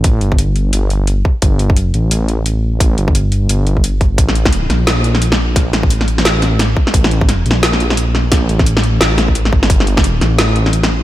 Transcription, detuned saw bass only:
Already playing: A1
0.21 G1
0.73 G1
1.42 G1
1.94 A1
2.98 G1
3.49 G1
4.18 A1
4.70 A#1
5.73 A1
6.25 A1
6.94 A1
7.46 A#1
8.49 A1
9.01 A1
9.49 G#1
9.70 G1
10.22 A1

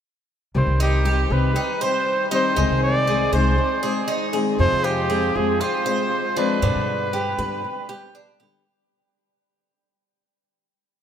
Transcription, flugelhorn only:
0.57 C5
0.82 G4
1.32 B4
1.83 C5
2.35 C5
2.83 D5
3.34 C5
4.60 C5
4.85 G4
5.36 G#4
5.61 C5
6.38 B4

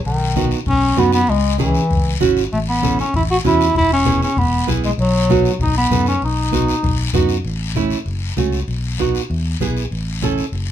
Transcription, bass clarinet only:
0.06 D#3
0.68 C#4
0.99 B3
1.14 B3
1.30 G#3
1.59 E3
2.52 A3
2.69 B3
3.00 C#4
3.16 E4
3.31 F#4
3.47 E4
3.77 E4
3.93 C#4
4.23 C#4
4.38 B3
4.85 G#3
5.01 F#3
5.63 D#4
5.78 B3
6.08 C#4
6.25 D#4

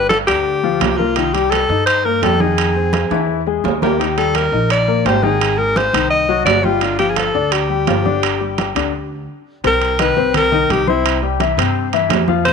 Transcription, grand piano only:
Already playing: G3 G4
0.28 D3 D4
0.63 F3 F4
0.99 A#3 A#4
1.16 D#3 D#4
1.34 G3 G4
1.70 D#4 D#5
2.05 A#3 A#4
2.22 G3 G4
2.40 D#3 D#4
2.75 C4 C5
3.11 E3 E4
3.47 G#3 G#4
3.82 A#3 A#4
3.99 D#3 D#4
4.17 G3 G4
4.53 D#4 D#5
4.88 A#3 A#4
5.06 G3 G4
5.23 D#3 D#4
5.58 G#3 G#4
5.94 D#3 D#4
6.29 F#3 F#4
6.64 G3 G4
6.82 D3 D4
6.99 F3 F4
7.34 D4 D5
7.69 G3 G4
7.87 F3 F4
8.05 D3 D4
8.41 G3 G4
8.76 D3 D4
9.64 C3 C4 C5
9.99 D#3 D#4 D#5
10.17 C3 C4 C5
10.52 D#3 D#4 D#5
10.87 C4 C5 C6
11.22 G3 G4 G5
11.40 E3 E4 E5
11.58 C3 C4 C5
11.93 E3 E4 E5
12.28 F3 F4 F5
12.45 C3 C4 C5

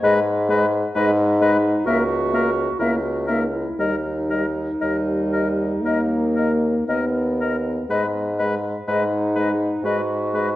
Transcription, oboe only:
0.04 B4
0.49 B4
0.95 B4
1.42 B4
1.87 A#4
2.34 A#4
2.79 A#4
3.27 A#4
3.80 A#4
4.30 A#4
4.81 A#4
5.32 A#4
5.85 A#4
6.36 A#4
6.89 A#4
7.41 A#4
7.90 B4
8.39 B4
8.88 B4
9.36 B4
9.85 B4
10.34 B4

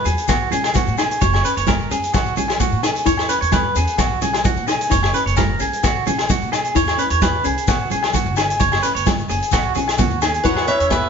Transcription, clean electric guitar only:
0.05 G#4
0.29 F#4
0.52 G#4
0.75 F#4
0.99 G#4
1.21 C#5
1.45 B4
1.57 C#5
1.68 A#4
1.91 G#4
2.14 F#4
2.37 G#4
2.60 F#4
2.83 G#4
3.06 C#5
3.29 B4
3.41 C#5
3.53 B4
3.77 G#4
3.99 F#4
4.22 G#4
4.45 F#4
4.68 G#4
4.91 C#5
5.14 B4
5.26 C#5
5.37 A#4
5.60 G#4
5.84 F#4
6.07 G#4
6.30 F#4
6.52 G#4
6.76 C#5
6.99 B4
7.11 C#5
7.22 B4
7.45 G#4
7.69 F#4
7.91 G#4
8.14 F#4
8.37 G#4
8.60 C#5
8.83 B4
8.95 C#5
9.29 G#4
9.53 F#4
9.75 G#4
9.99 F#4
10.22 G#4
10.45 C#5
10.68 B4
10.81 C#5
10.92 B4

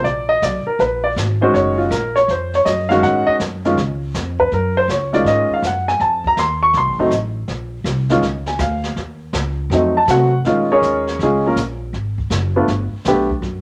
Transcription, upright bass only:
0.04 A#1
0.42 B1
0.66 muted upright bass stroke
0.79 A#1
1.16 G#1
1.54 F#1
1.91 A#1
2.28 F2
2.66 F#2
3.02 G#2
3.27 muted upright bass stroke
3.40 F#2
3.77 C#2
4.15 F2
4.52 F#2
4.88 C#2
5.24 G#2
5.50 muted upright bass stroke
5.62 F#2
6.00 F2
6.37 D#2
6.74 C2
6.87 A1
6.99 F1
7.11 A1
7.48 A#1
7.84 C2
8.22 C#2
8.59 D2
8.96 D#2
9.33 C#2
9.70 F2
10.07 C3
10.45 A#2
10.82 D#2
11.19 C#2
11.56 A#1
11.93 G#1
12.30 F#1
12.68 G1
12.93 muted upright bass stroke
13.06 B1
13.42 F#2

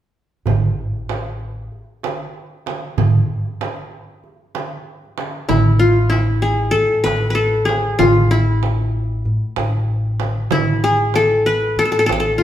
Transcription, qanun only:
5.49 E4
5.79 F4
6.10 E4
6.42 G#4
6.71 A4
7.04 B4
7.30 B4
7.35 A4
7.65 G#4
7.99 F4
8.31 E4
10.52 E4
10.84 G#4
11.15 A4
11.46 B4
11.79 A4
11.85 A4
11.92 A4
11.99 A4
12.06 A4
12.12 A4
12.20 A4
12.38 F4

